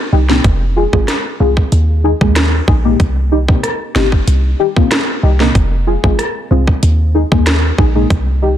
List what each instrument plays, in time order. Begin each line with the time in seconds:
0.12 808-style bass C2, synth stab D#4 G4
0.29 synth stab A#3 C4 D#4 G4, snare
0.44 808-style bass F1, kick, closed hi-hat
0.76 synth stab F4 G#4
0.93 808-style bass G#1, synth stab G#3 C4 F4 G#4, kick
1.08 cross-stick, snare, closed hi-hat
1.40 808-style bass C2, synth stab G#3 C4 F4 G#4
1.57 kick
1.72 808-style bass D#2, closed hi-hat
2.04 synth stab D#4 G#4
2.21 808-style bass D#2, synth stab G#3 A#3 D#4 G#4, kick
2.36 cross-stick, snare, closed hi-hat
2.68 808-style bass A#1, synth stab D#4 G#4, kick
2.85 synth stab G#3 A#3 D#4 G4
3.00 808-style bass C2, kick, closed hi-hat
3.32 synth stab D#4 G4
3.48 synth stab A#3 C4 D#4 G4, kick
3.63 cross-stick, closed hi-hat
3.96 808-style bass G1, synth stab A#3 C4 D#4 G4, snare
4.12 kick
4.27 808-style bass C2, closed hi-hat
4.59 synth stab D#4 G4
4.76 synth stab A#3 C4 D#4 F4, kick
4.91 cross-stick, snare, closed hi-hat
5.23 808-style bass C2, synth stab D#4 G4
5.40 synth stab A#3 C4 D#4 A#4, snare
5.55 808-style bass F1, kick, closed hi-hat
5.87 synth stab F4 G#4
6.04 808-style bass G#1, synth stab G#3 C4 F4 G#4, kick
6.19 cross-stick, closed hi-hat
6.51 808-style bass C2, synth stab G#3 C4 F4 G#4
6.67 kick
6.83 808-style bass D#2, closed hi-hat
7.15 synth stab D#4 G#4
7.31 808-style bass D#2, synth stab G#3 A#3 D#4 G#4, kick
7.46 cross-stick, snare, closed hi-hat
7.78 808-style bass A#1, synth stab D#4 G#4, kick
7.95 synth stab G#3 A#3 D#4 G#4
8.10 808-style bass C2, kick, closed hi-hat
8.42 synth stab D#4 G4